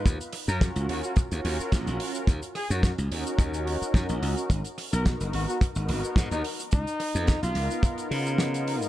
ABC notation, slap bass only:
X:1
M:4/4
L:1/16
Q:"Swing 16ths" 1/4=108
K:Ebm
V:1 name="Slap bass" clef=bass
E,, z2 G,,2 D,, E,, z2 E,, E,, z B,,, B,,, z2 | E,, z2 G,,2 D,, E,, z E,,3 z G,, B,,, D,, z | A,,, z2 C,,2 G,,, A,,, z2 A,,, A,,, z A,, E,, z2 | D,, z2 F,,2 C,, D,, z3 D,4- D, A,, |]